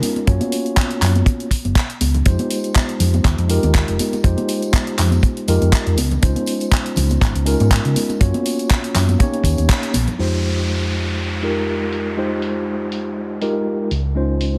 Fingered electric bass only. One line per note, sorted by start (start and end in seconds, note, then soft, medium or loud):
0.27 0.38 F#2 loud
1.02 1.21 F#2 medium
1.65 1.73 F#1 medium
2.01 2.20 C#2 medium
2.26 2.36 F2 loud
3.00 3.19 F2 medium
3.25 3.35 D#2 medium
3.38 3.56 F2 loud
3.63 3.81 D#2 loud
3.88 3.97 F1 medium
4.24 4.34 F2 loud
4.99 5.18 F2 loud
5.48 5.58 F2 medium
5.62 5.70 F2 medium
5.87 5.98 F2 medium
5.98 6.17 C#2 medium
6.23 6.33 C#2 loud
6.97 7.16 C#2 medium
7.21 7.32 G#1 medium
7.35 7.53 C#2 loud
7.60 7.78 G#2 loud
7.85 7.93 C#3 medium
8.21 8.31 F#2 loud
8.95 9.14 F#2 medium
9.44 9.54 D#2 loud
9.58 9.67 D#2 medium
9.95 10.05 A#1 loud
10.19 13.89 F2 medium
13.91 14.58 C#2 medium